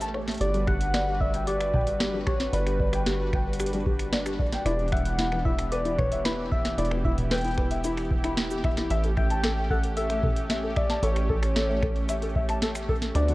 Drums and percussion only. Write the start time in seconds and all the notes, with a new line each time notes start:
0.01 closed hi-hat, cabasa
0.14 finger snap
0.28 snare, closed hi-hat
0.31 closed hi-hat
0.34 closed hi-hat
0.38 closed hi-hat
0.41 closed hi-hat
0.54 closed hi-hat
0.67 finger snap, kick
0.81 closed hi-hat
0.94 finger snap, snare, closed hi-hat
1.21 kick
1.34 closed hi-hat
1.47 closed hi-hat
1.60 finger snap, closed hi-hat
1.74 kick, mid tom
1.87 closed hi-hat
2.00 finger snap, snare, closed hi-hat
2.27 finger snap, kick
2.40 snare, closed hi-hat
2.53 closed hi-hat
2.67 finger snap, closed hi-hat
2.80 kick
2.93 finger snap, closed hi-hat
3.06 snare, closed hi-hat
3.33 finger snap, kick
3.53 closed hi-hat
3.60 finger snap, cabasa
3.66 closed hi-hat
3.73 closed hi-hat
3.86 kick
3.99 finger snap, closed hi-hat
4.13 snare, closed hi-hat
4.26 finger snap, cabasa
4.39 kick
4.52 snare, closed hi-hat
4.66 finger snap, closed hi-hat
4.79 closed hi-hat
4.88 closed hi-hat
4.92 finger snap, kick
4.97 closed hi-hat
5.05 closed hi-hat
5.19 snare, closed hi-hat
5.32 finger snap
5.45 kick
5.59 finger snap, closed hi-hat
5.72 closed hi-hat
5.85 closed hi-hat
5.98 finger snap, kick, mid tom
6.12 closed hi-hat
6.25 finger snap, snare, closed hi-hat
6.52 kick
6.65 finger snap, snare, closed hi-hat
6.78 closed hi-hat
6.85 closed hi-hat
6.91 finger snap
7.05 kick
7.18 closed hi-hat, mid tom
7.31 finger snap, snare, closed hi-hat
7.34 closed hi-hat
7.38 closed hi-hat
7.41 closed hi-hat
7.44 closed hi-hat
7.48 closed hi-hat
7.51 closed hi-hat
7.58 finger snap, kick
7.71 closed hi-hat
7.84 closed hi-hat, cabasa
7.97 finger snap, closed hi-hat
8.11 kick
8.24 finger snap, closed hi-hat
8.37 snare, closed hi-hat
8.51 cabasa
8.64 finger snap, kick
8.77 snare, closed hi-hat
8.90 closed hi-hat
9.04 closed hi-hat
9.17 finger snap, kick
9.30 closed hi-hat
9.43 finger snap, snare, closed hi-hat
9.70 kick
9.83 closed hi-hat
9.97 closed hi-hat
10.10 finger snap, closed hi-hat
10.23 kick, mid tom
10.36 closed hi-hat
10.50 finger snap, snare, closed hi-hat
10.76 finger snap, kick
10.90 snare, closed hi-hat
11.03 closed hi-hat
11.16 finger snap, closed hi-hat
11.29 kick
11.43 finger snap, closed hi-hat
11.56 snare, closed hi-hat
11.82 finger snap, kick
11.96 closed hi-hat
12.09 finger snap, closed hi-hat, cabasa
12.22 closed hi-hat
12.36 kick
12.49 finger snap, closed hi-hat
12.62 snare, closed hi-hat
12.75 finger snap, cabasa
12.89 kick
13.02 snare, closed hi-hat
13.15 finger snap, closed hi-hat
13.28 closed hi-hat